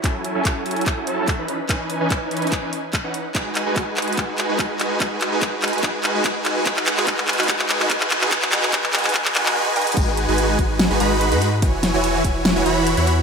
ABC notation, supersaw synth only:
X:1
M:4/4
L:1/16
Q:1/4=145
K:G#phr
V:1 name="Supersaw synth"
[F,CEAg]3 [F,CEAg]3 [F,CEAg]3 [F,CEAg] [F,CEAa]3 [E,CDBb]2 z | [E,CDBg]3 [E,CDBg]3 [E,CDBg]3 [E,CDBg] z3 [E,CDBf] z2 | [G,DFBg]3 [G,DFBg]3 [G,DFBg]2 [G,DFBg]3 [G,DFBg]3 [G,DFBg]2 | [G,DFBg]3 [G,DFBg]3 [G,DFBg]2 [G,DFBg]3 [G,DFBg]3 [G,DFBg]2 |
[G,DFBg]3 [G,DFBg] [G,DFBg]3 [G,DFBg] [G,DFBg]3 [G,DFBg] [G,DFBg]3 [G,DFBg] | [G,DFBg]2 [G,DFBg]2 [G,DFBg]2 [G,DFBg]2 [G,DFBg]2 [G,DFBg]2 [G,DFBg]2 [G,DFBg]2 | [G,DFBg]3 [G,DFBg]3 [G,DFBg]3 [G,DFBg] [G,DFBb]3 [G,DFBb]2 z | [E,EFcg]3 [E,EFcg]3 [E,EFcg]3 [E,EFcg] [E,EFcb]3 [E,EFcb]2 z |]